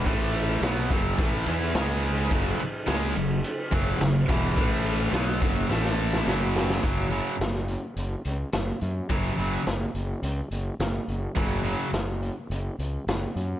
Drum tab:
RD |x-x-x-x-x-x-x-x-|x-x-x-x-x-x-x-x-|x-x-x-x---------|----------------|
HH |----------------|----------------|----------------|x-x-x-x-x-x-x-x-|
SD |----oo------o---|----o-------o---|----oo--oo-oo-oo|----oo------o---|
BD |o-----o-o-------|o---------o---o-|o-----o---------|o---------------|

RD |----------------|----------------|
HH |x-x-x-x-x-x-x-x-|x-x-x-x-x-x-x-x-|
SD |----o-------o---|----o-------o---|
BD |o---------------|o---------------|